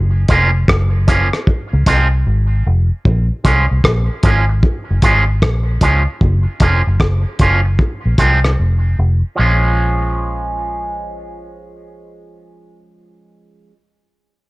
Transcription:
Already playing: F#1
0.28 F1 F3 A#3 C#4 F4, kick, closed hi-hat
0.68 F#1, kick, cross-stick
1.07 F3 A#3 C#4 F4, kick, closed hi-hat
1.33 cross-stick
1.47 kick
1.73 C#2
1.86 C2 F3 G#3 C4 F4, kick, closed hi-hat
2.27 G#1
2.67 F1
3.05 A#1, kick
3.44 C2 F3 G#3 C#4 F4, kick, closed hi-hat
3.71 C2
3.84 A#1, kick, cross-stick
4.23 G#1 F3 G#3 C#4 F4, kick, closed hi-hat
4.49 muted clean electric guitar stroke
4.63 kick
4.91 F#1
5.02 G#1 F3 G#3 C#4 F4, kick, closed hi-hat
5.42 A#1, kick, cross-stick
5.81 C#2 F3 G#3 C#4 F4, kick, closed hi-hat
6.21 F#1, kick
6.60 F1 F3 A#3 C#4 F4, kick, closed hi-hat
6.87 F#1
7.00 F#1, kick, cross-stick
7.39 F#1 F3 A#3 C#4 F4, kick, closed hi-hat
7.65 muted clean electric guitar stroke
7.79 kick
8.06 A#1
8.18 C2 F3 G#3 C4 F4, kick, closed hi-hat
8.45 cross-stick
8.59 F1
8.99 F1
9.36 A#1 F3 G#3 C#4
9.41 F4

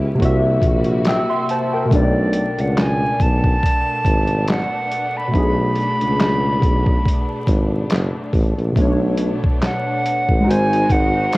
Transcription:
Already playing: C#2 C#3 B3 C#4 E4 G4 B4 E5
0.15 C3 A#3
0.19 C2 C3 G3 A#3 E4 F#4, kick, closed hi-hat
0.25 E5
0.62 A#1, kick, closed hi-hat
0.84 closed hi-hat
1.05 G5 E6, snare, clap, closed hi-hat
1.29 E5 C6
1.49 C5 A5, closed hi-hat
1.73 A#4 G5
1.85 B2 A3
1.91 B1 A3 B3 D4 D5, kick, closed hi-hat
2.33 closed hi-hat
2.59 C#2 F#5, closed hi-hat
2.77 G#5, snare, clap, closed hi-hat
3.20 B1 A5, kick, closed hi-hat
3.44 kick
3.63 kick, closed hi-hat
4.05 G#1, kick, closed hi-hat
4.27 closed hi-hat
4.48 F#5, snare, clap, closed hi-hat
4.92 closed hi-hat
5.17 B5
5.28 B2 A3
5.34 B1 D4 G#4, kick, closed hi-hat
5.76 closed hi-hat
6.01 C#2, closed hi-hat
6.20 snare, clap, closed hi-hat
6.62 B1, kick, closed hi-hat
6.86 kick
7.05 kick, closed hi-hat
7.47 G#1, kick, snare, closed hi-hat
7.90 F#1, snare, clap, closed hi-hat
8.33 A1, kick, open hi-hat
8.58 A#1, closed hi-hat
8.71 B2 A3
8.76 B1 A3 B3 D4, kick, closed hi-hat
8.81 C#5
9.18 closed hi-hat
9.44 kick
9.62 F#5, snare, clap, closed hi-hat
10.06 closed hi-hat
10.29 A1, kick
10.40 G#3 D#4
10.47 G#1 G#3 D#4 F#4 A#4 C5 G#5, closed hi-hat
10.73 closed hi-hat
10.90 G#1 F#5, kick, closed hi-hat
11.33 clap, closed hi-hat

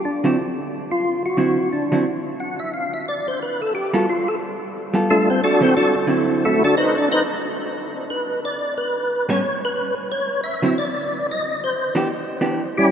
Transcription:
0.05 D4
0.24 D3 F#3 C4 E4
0.92 F4
1.26 F#4
1.37 D3 F#3 C4 E4 F#4
1.73 D4
1.92 D3 F#3 C4 E4
2.40 F#5
2.59 E5
2.74 F5
2.94 E5
3.08 D5
3.28 C5
3.43 B4
3.62 A4
3.75 G4
3.93 G3 B3 F4 F#4 A4
4.10 F4
4.28 A4
4.94 G3 B3 F4 A4
5.10 A3 D4 F4 A4
5.30 C4 C5
5.44 D4 F#4 A4 D5
5.61 D3 F#3 C4 E4 F#4 A4 C5
5.77 D4 F#4 A4 D5
6.07 D3 F#3 C4 E4
6.45 A3 E4 F#4 A4
6.64 D4 F#4 A4 D5
6.77 D#4 B4 C5 D#5
6.98 D4 D5
7.12 D#4 B4 C5 D#5
8.10 B4
8.45 D5
8.78 B4
9.29 A2 G3 B3 C#4 C#5
9.65 B4
10.12 C#5
10.44 E5
10.62 D3 F#3 C4 E4
10.78 D5
11.31 D#5
11.64 C5
11.95 E3 B3 D4 G4
12.41 E3 B3 D4 G4
12.77 G3 C#4 E4 G4

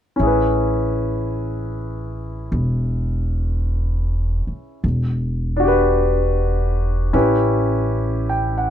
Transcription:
0.16 A1 C#4 E4
0.23 G#4
0.27 B4
2.52 E1
4.47 muted upright bass stroke
4.84 E1
5.56 D4 F#4
5.64 G4
5.68 B4
7.13 A1 C#4 E4 G4 B4
8.29 G5
8.58 F#5

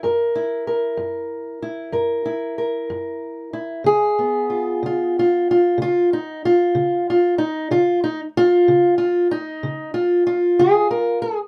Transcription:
0.03 F#2 A#4
0.35 E4
0.67 A#4
0.97 F#2
1.62 E4
1.92 F#2 A#4
2.26 E4
2.58 A#4
2.90 F#2
3.53 E4
3.84 C#3 G#4
4.19 B3
4.50 F4
4.83 C#3 F4
5.19 F4
5.51 F4
5.78 C#3
5.82 F4
6.13 D#4
6.45 F4
6.75 C#3
7.10 F4
7.38 D#4
7.71 C#3 F4
8.04 D#4
8.37 F4
8.68 C#3
8.98 F4
9.31 D#4
9.63 C#3
9.94 F4
10.27 F4
10.59 C#3 G#4
10.91 A#4
11.22 G#4

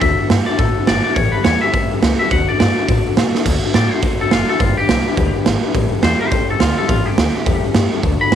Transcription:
0.01 D2 D3 A3 D4 F#4 A4 E5, kick, open hi-hat
0.19 D4 F#4 A4
0.30 G2 A3 D4 F#4 A4, snare, open hi-hat
0.46 F#4 A4 D5, muted upright bass stroke
0.50 D4
0.58 A2 D3 A3 D4 F#4 A4, kick, open hi-hat
0.77 D4 F#4 A4
0.87 G1 A3 D4 A4 D5, snare, open hi-hat
1.04 F#4 A4 D5
1.08 D4
1.15 A1 A2 E3 G3 C#4 G4 A4 C#5, kick, open hi-hat
1.32 G4 A4 B4, muted upright bass stroke
1.36 G3 C#4
1.44 E2 G3 C#4 G4 A4 C#5, snare, open hi-hat
1.61 G3 C#4 G4 A4 E5, muted upright bass stroke
1.73 C#2 A2 E3 G3 C#4 G4 A4, kick, open hi-hat
1.91 A1 G3 C#4 G4 A4
2.02 C#2 G3 C#4 G4 A4, snare, open hi-hat
2.19 G3 C#4 G4 A4 E5
2.31 D2 D3 A3 D4 F#4 A4 F#5, kick, open hi-hat
2.49 D4 F#4 A4 D5
2.60 G2 A3 F#4 A4 D5, snare, open hi-hat
2.77 D4 F#4 A4, muted upright bass stroke
2.89 A2 D3 A3 D4 F#4 A4, kick, open hi-hat
3.06 D4 F#4 A4, muted upright bass stroke
3.17 B2 A3 D4 F#4 A4, snare, open hi-hat
3.35 D4 F#4 A4, muted upright bass stroke, snare
3.45 D2 D3 A3 D4 F#4 A4, kick, crash
3.64 D4 F#4 A4
3.74 A2 A3 D4 A4 D5, snare, open hi-hat
3.92 D4 F#4 A4 C5, muted upright bass stroke
4.03 F#2 D3 A3 D4 F#4 A4, kick, open hi-hat
4.20 D2 D4 F#4 A4
4.31 F#1 F4, snare, open hi-hat
4.49 D4 F#4 A4, muted upright bass stroke
4.59 G1 G3 D4 F4 G4 B4, kick, open hi-hat
4.77 D4 G4 B4, muted upright bass stroke
4.89 B1 G3 B4, snare, open hi-hat
5.07 D4 G4 B4
5.17 D2 G3 D4 G4 B4, kick, open hi-hat
5.35 D4 G4 B4, muted upright bass stroke
5.45 G#1 G3 D4 G4 B4, snare, open hi-hat
5.63 D4 G4 B4, muted upright bass stroke
5.74 A1 A2 E3 G3 C#4 G4 A4, kick, open hi-hat
5.91 G3 C#4 G4 A4, muted upright bass stroke
6.03 E2 G3 C#4 G4 A4 C5, snare, open hi-hat
6.21 G3 C#4 G4 A4 C5, muted upright bass stroke
6.31 C#2 A2 E3 G3 C#4 G4 A4, kick, open hi-hat
6.50 A1 G3 C#4 G4 A4
6.60 D2 G3 C#4 F4 G4 A4, snare, open hi-hat
6.78 G3 C#4 G4 A4
6.88 A1 A2 E3 G3 C#4 F4 G4 A4, kick, open hi-hat
7.06 G3 C#4 G4 A4, muted upright bass stroke
7.17 D2 G3 C#4 G4 A4, snare, open hi-hat
7.35 G3 C#4 G4 A4
7.46 E2 A2 E3 G3 C#4 G4 A4, kick, open hi-hat
7.63 G3 C#4 G4 A4
7.74 G2 G3 C#4 G4 A4, snare, open hi-hat
7.93 G3 C#4 G4 A4
8.03 D2 D3 A3 D4 F#4 A4, kick, open hi-hat
8.21 D4 F#4 A4 B5, muted upright bass stroke
8.32 A2

